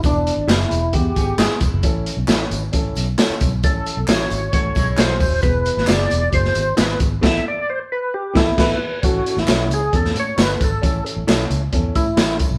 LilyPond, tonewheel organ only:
\new Staff \with { instrumentName = "Tonewheel organ" } { \time 4/4 \key a \major \tempo 4 = 134 << { d'4 e'4 g'4 gis'8 r8 | r1 | a'4 cis''4 cis''4 c''4 | b'4 d''4 c''4 b'8 r8 |
e''8 d''8 c''8 b'8 g'8 a'8 b'4 | r1 | r1 | } \\ { r1 | r1 | r1 | r1 |
r2 r8 e'4 r8 | fis'8. e'8. gis'8 a'8 cis''8 b'8 a'8~ | a'8 r2 e'4 r8 | } >> }